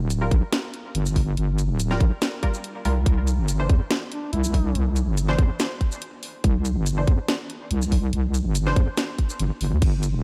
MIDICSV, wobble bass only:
0, 0, Header, 1, 2, 480
1, 0, Start_track
1, 0, Tempo, 422535
1, 1557, Time_signature, 4, 2, 24, 8
1, 11625, End_track
2, 0, Start_track
2, 0, Title_t, "Wobble bass"
2, 0, Program_c, 0, 39
2, 6, Note_on_c, 0, 26, 91
2, 344, Note_off_c, 0, 26, 0
2, 357, Note_on_c, 0, 34, 89
2, 474, Note_off_c, 0, 34, 0
2, 1078, Note_on_c, 0, 31, 85
2, 1543, Note_off_c, 0, 31, 0
2, 1559, Note_on_c, 0, 31, 106
2, 1926, Note_on_c, 0, 26, 89
2, 1943, Note_off_c, 0, 31, 0
2, 2264, Note_off_c, 0, 26, 0
2, 2278, Note_on_c, 0, 34, 88
2, 2394, Note_off_c, 0, 34, 0
2, 3241, Note_on_c, 0, 36, 89
2, 3461, Note_off_c, 0, 36, 0
2, 3479, Note_on_c, 0, 36, 105
2, 3845, Note_on_c, 0, 31, 83
2, 3862, Note_off_c, 0, 36, 0
2, 4184, Note_off_c, 0, 31, 0
2, 4199, Note_on_c, 0, 40, 89
2, 4315, Note_off_c, 0, 40, 0
2, 4919, Note_on_c, 0, 36, 80
2, 5384, Note_off_c, 0, 36, 0
2, 5397, Note_on_c, 0, 36, 103
2, 5762, Note_on_c, 0, 31, 86
2, 5780, Note_off_c, 0, 36, 0
2, 6102, Note_off_c, 0, 31, 0
2, 6119, Note_on_c, 0, 40, 93
2, 6235, Note_off_c, 0, 40, 0
2, 7318, Note_on_c, 0, 36, 104
2, 7686, Note_on_c, 0, 31, 83
2, 7703, Note_off_c, 0, 36, 0
2, 8024, Note_off_c, 0, 31, 0
2, 8038, Note_on_c, 0, 40, 88
2, 8154, Note_off_c, 0, 40, 0
2, 8756, Note_on_c, 0, 36, 82
2, 9223, Note_off_c, 0, 36, 0
2, 9238, Note_on_c, 0, 36, 105
2, 9601, Note_on_c, 0, 31, 91
2, 9619, Note_off_c, 0, 36, 0
2, 9942, Note_off_c, 0, 31, 0
2, 9956, Note_on_c, 0, 40, 90
2, 10073, Note_off_c, 0, 40, 0
2, 10676, Note_on_c, 0, 31, 87
2, 10793, Note_off_c, 0, 31, 0
2, 10917, Note_on_c, 0, 31, 88
2, 11045, Note_on_c, 0, 40, 94
2, 11062, Note_off_c, 0, 31, 0
2, 11149, Note_off_c, 0, 40, 0
2, 11157, Note_on_c, 0, 31, 101
2, 11525, Note_on_c, 0, 26, 88
2, 11542, Note_off_c, 0, 31, 0
2, 11625, Note_off_c, 0, 26, 0
2, 11625, End_track
0, 0, End_of_file